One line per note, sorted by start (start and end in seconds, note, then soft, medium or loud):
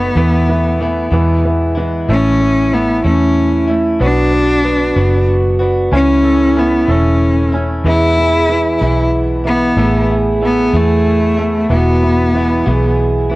0.00 0.12 F#1 medium
0.00 0.16 A3 soft
0.00 0.18 B3 medium
0.00 1.42 B3 medium
0.00 0.16 D#4 soft
0.00 0.15 F#4 medium
0.00 0.17 F#4 medium
0.15 0.80 E2 medium
0.15 1.08 E2 loud
0.15 0.80 B2 medium
0.15 0.79 E3 medium
0.15 0.48 E3 medium
0.15 0.79 A3 medium
0.15 0.80 B3 medium
0.15 0.82 E4 medium
0.49 0.79 E3 medium
0.79 1.11 E3 medium
0.79 1.12 E3 medium
0.79 1.12 A3 medium
0.79 1.10 B3 medium
0.79 1.09 E4 medium
1.10 2.04 E2 medium
1.10 1.77 E2 medium
1.10 1.77 B2 medium
1.10 1.78 E3 medium
1.10 1.44 E3 medium
1.10 1.76 G#3 medium
1.10 1.75 B3 medium
1.10 1.75 E4 medium
1.45 1.76 E3 medium
1.75 2.08 E3 medium
1.75 2.08 E3 soft
1.75 2.09 G#3 soft
1.75 2.08 B3 medium
1.75 2.08 E4 medium
2.08 3.01 A1 loud
2.08 2.72 A2 medium
2.08 2.71 E3 medium
2.08 2.72 A3 medium
2.08 2.39 A3 medium
2.08 2.73 C#4 medium
2.08 2.75 C#4 loud
2.08 3.97 E4 medium
2.08 2.73 E4 medium
2.41 2.71 A3 medium
2.72 3.04 E3 medium
2.72 3.04 A3 medium
2.72 3.04 B3 loud
2.72 3.03 C#4 medium
2.72 3.02 E4 medium
3.04 3.97 E2 medium
3.04 3.69 A2 medium
3.04 3.69 E3 medium
3.04 3.69 A3 medium
3.04 3.68 A3 medium
3.04 3.68 C#4 medium
3.04 3.65 C#4 loud
3.04 3.66 E4 medium
3.67 4.00 A3 soft
3.67 4.01 C#4 soft
3.67 4.00 E4 medium
3.99 4.93 B1 loud
3.99 4.64 B2 medium
3.99 4.63 F#3 medium
3.99 4.31 B3 medium
3.99 4.64 B3 medium
3.99 4.65 D4 medium
3.99 4.64 F#4 loud
3.99 4.65 F#4 medium
4.03 5.26 D4 loud
4.32 4.63 B3 medium
4.64 4.96 F#3 medium
4.64 4.95 B3 medium
4.64 4.96 B3 medium
4.64 4.96 D4 medium
4.64 5.89 F#4 loud
4.64 4.95 F#4 medium
4.96 5.89 F#1 medium
4.96 5.62 B2 medium
4.96 5.61 F#3 medium
4.96 5.59 B3 medium
4.96 5.61 B3 medium
4.96 5.60 D4 medium
4.96 5.58 F#4 medium
5.59 5.92 B3 medium
5.59 5.93 B3 soft
5.59 5.93 D4 medium
5.59 5.92 F#4 medium
5.92 6.85 C#2 loud
5.92 6.56 C#3 medium
5.92 6.55 E3 medium
5.92 6.55 A3 medium
5.92 6.55 C#4 medium
5.92 6.56 C#4 medium
5.92 6.60 C#4 loud
5.92 7.55 E4 loud
5.92 6.59 E4 medium
6.24 6.88 A4 medium
6.56 6.88 E3 medium
6.56 6.88 A3 medium
6.56 6.92 B3 loud
6.56 7.52 C#4 medium
6.56 6.88 C#4 medium
6.56 6.87 E4 medium
6.88 7.81 E1 medium
6.88 7.54 C#3 medium
6.88 7.85 E3 medium
6.88 7.53 A3 medium
6.88 7.53 C#4 medium
6.88 7.54 C#4 medium
6.88 7.52 E4 medium
6.88 7.82 A4 medium
7.52 7.85 A3 soft
7.52 7.85 C#4 medium
7.52 7.86 C#4 soft
7.52 7.85 E4 medium
7.84 8.49 E2 medium
7.84 8.77 E2 loud
7.84 8.49 B2 medium
7.84 8.16 E3 medium
7.84 8.48 E3 medium
7.84 8.48 G#3 medium
7.84 8.50 B3 medium
7.84 8.51 E4 medium
7.84 9.10 E4 loud
7.84 9.42 G#4 loud
8.18 8.48 E3 medium
8.48 8.81 E3 medium
8.48 8.80 E3 medium
8.48 8.81 G#3 medium
8.48 8.80 B3 medium
8.48 8.80 E4 medium
8.81 9.74 B1 medium
8.81 9.46 E2 medium
8.81 9.46 B2 medium
8.81 9.44 E3 medium
8.81 9.47 E3 medium
8.81 9.45 G#3 medium
8.81 9.45 B3 medium
8.81 9.44 E4 medium
9.44 9.76 E3 medium
9.44 9.77 E3 soft
9.44 9.78 G#3 soft
9.44 9.77 B3 soft
9.44 10.06 B3 loud
9.44 9.77 E4 soft
9.77 10.69 A1 medium
9.77 10.41 A2 medium
9.77 10.41 E3 medium
9.77 10.41 A3 medium
9.77 10.43 B3 medium
9.77 10.44 E4 medium
9.77 11.66 G#4 loud
10.10 10.72 E4 medium
10.41 10.73 E3 medium
10.41 11.37 A3 medium
10.41 10.74 A3 medium
10.41 10.73 B3 medium
10.41 10.72 E4 medium
10.45 10.78 B3 loud
10.73 11.66 E2 loud
10.73 11.39 A2 medium
10.73 11.70 E3 medium
10.73 11.38 A3 medium
10.73 11.71 A3 loud
10.73 11.38 B3 medium
10.73 11.37 E4 medium
10.73 11.67 E4 medium
11.37 11.69 A3 medium
11.37 11.71 A3 soft
11.37 11.70 B3 soft
11.37 11.70 E4 medium
11.70 12.62 E1 medium
11.70 12.34 E2 medium
11.70 12.34 B2 medium
11.70 12.01 E3 medium
11.70 12.34 F#3 medium
11.70 12.34 G#3 medium
11.70 12.35 B3 medium
11.70 12.96 B3 loud
11.70 12.35 E4 medium
11.70 12.31 F#4 loud
12.03 12.33 E3 medium
12.34 12.65 E3 medium
12.34 12.66 F#3 medium
12.34 12.66 G#3 medium
12.34 12.65 B3 medium
12.34 12.64 E4 medium
12.34 12.65 E4 medium
12.66 13.36 B1 loud
12.66 13.31 E2 medium
12.66 13.31 B2 medium
12.66 13.30 E3 medium
12.66 13.33 F#3 medium
12.66 13.31 G#3 medium
12.66 13.30 B3 medium
12.66 13.29 E4 medium
12.66 13.36 G#4 loud
13.30 13.36 E3 medium
13.30 13.36 G#3 medium
13.30 13.36 B3 medium
13.30 13.36 E4 medium